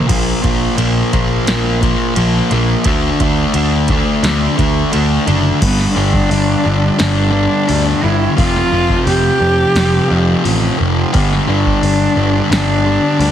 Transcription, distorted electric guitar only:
0.07 0.40 A#2 medium
0.07 0.41 F3 loud
0.07 0.41 A#3 loud
0.41 0.74 A#2 medium
0.41 0.76 F3 medium
0.41 0.77 A#3 medium
0.76 1.11 A#2 medium
0.76 1.11 F3 medium
0.76 1.12 A#3 medium
1.13 1.47 A#2 medium
1.13 1.46 F3 medium
1.13 1.47 A#3 loud
1.47 1.80 A#2 medium
1.47 1.81 F3 loud
1.47 1.82 A#3 loud
1.81 2.14 A#2 medium
1.81 2.15 F3 medium
1.81 2.16 A#3 loud
2.15 2.50 A#2 medium
2.15 2.50 F3 medium
2.15 2.51 A#3 loud
2.51 2.84 A#2 medium
2.51 2.84 F3 medium
2.51 2.84 A#3 loud
2.86 3.19 D3 loud
2.86 3.20 A3 medium
2.86 3.21 D4 medium
3.21 3.54 D3 medium
3.21 3.54 A3 medium
3.21 3.55 D4 medium
3.56 3.89 D3 medium
3.56 3.89 A3 medium
3.56 3.90 D4 loud
3.90 4.22 D3 medium
3.90 4.23 A3 loud
3.90 4.24 D4 medium
4.24 4.56 D3 loud
4.24 4.56 A3 medium
4.24 4.56 D4 loud
4.57 4.90 D3 medium
4.57 4.91 A3 medium
4.57 4.92 D4 medium
4.92 5.25 D3 medium
4.92 5.25 A3 loud
4.92 5.26 D4 loud
5.26 5.59 D3 medium
5.26 5.59 A3 medium
5.26 5.60 D4 loud
5.60 5.94 G2 medium
5.60 5.95 D3 loud
5.60 5.96 G3 loud
5.95 6.28 G2 medium
5.95 6.29 D3 medium
5.95 6.30 G3 medium
6.30 6.63 G2 medium
6.30 6.64 D3 medium
6.30 6.65 G3 medium
6.64 6.97 G2 loud
6.64 6.97 D3 loud
6.64 6.98 G3 loud
6.98 7.30 G2 medium
6.98 7.31 D3 medium
6.98 7.32 G3 medium
7.31 7.66 G2 loud
7.31 7.66 D3 loud
7.31 7.68 G3 loud
7.67 8.01 G2 medium
7.67 8.02 D3 medium
7.67 8.03 G3 loud
8.02 8.35 G2 medium
8.02 8.36 D3 medium
8.02 8.37 G3 loud
8.37 8.70 F2 loud
8.37 8.72 C3 loud
8.37 8.73 F3 loud
8.72 9.06 F2 medium
8.72 9.06 C3 medium
8.72 9.07 F3 medium
9.07 9.39 F2 medium
9.07 9.39 C3 medium
9.07 9.39 F3 medium
9.40 9.75 F2 loud
9.40 9.75 C3 loud
9.40 9.75 F3 loud
9.76 10.08 F2 medium
9.76 10.09 C3 medium
9.76 10.09 F3 medium
10.09 10.42 F2 loud
10.09 10.43 C3 loud
10.09 10.43 F3 loud
10.43 10.76 F2 medium
10.43 10.77 C3 medium
10.43 10.77 F3 loud
10.77 11.11 F2 medium
10.77 11.11 C3 medium
10.77 11.11 F3 medium
11.12 11.46 G2 loud
11.12 11.47 D3 loud
11.12 11.48 G3 loud
11.47 11.81 G2 medium
11.47 11.82 D3 loud
11.47 11.83 G3 loud
11.82 12.14 G2 medium
11.82 12.15 D3 medium
11.82 12.16 G3 loud
12.15 12.50 G2 medium
12.15 12.50 D3 medium
12.15 12.52 G3 loud
12.51 12.84 G2 medium
12.51 12.84 D3 medium
12.51 12.86 G3 medium
12.85 13.18 G2 loud
12.85 13.19 D3 loud
12.85 13.20 G3 loud
13.20 13.32 G2 medium
13.20 13.32 D3 medium
13.20 13.32 G3 loud

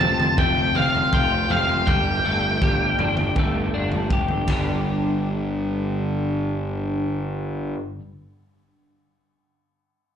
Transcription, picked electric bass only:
0.00 0.25 F1 medium
0.38 0.69 F1 medium
0.76 1.06 F1 medium
1.13 1.44 F1 medium
1.50 1.81 F1 medium
1.88 2.18 G1 medium
2.26 2.56 G1 medium
2.62 2.93 G1 medium
2.99 3.30 G1 medium
3.36 3.67 G1 medium
3.75 4.05 G1 medium
4.10 4.42 G1 medium
4.48 7.74 G1 medium

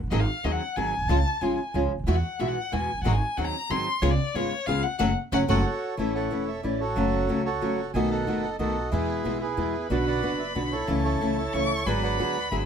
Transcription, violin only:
0.11 0.21 D#5 medium
0.20 0.46 F5 medium
0.44 0.53 D#5 medium
0.52 0.77 F#5 medium
0.76 1.10 G#5 medium
1.08 1.43 A5 loud
1.41 1.74 G#5 medium
2.07 2.16 E5 medium
2.15 2.41 F#5 medium
2.40 2.49 E5 medium
2.48 2.74 F#5 medium
2.72 3.03 G#5 medium
3.03 3.14 F#5 medium
3.13 3.39 G#5 medium
3.37 3.46 F#5 medium
3.45 3.72 A#5 loud
3.71 4.04 C6 loud
4.02 4.12 C#5 medium
4.11 4.36 D5 medium
4.35 4.68 C#5 medium
4.66 4.84 F5 loud
4.82 4.98 F#5 medium
4.98 5.09 F#5 loud
5.32 5.43 F#5 loud
5.49 5.60 F#5 loud
9.89 10.89 B5 medium
10.88 11.55 A5 medium
11.53 11.88 C#6 loud
11.86 12.65 B5 medium

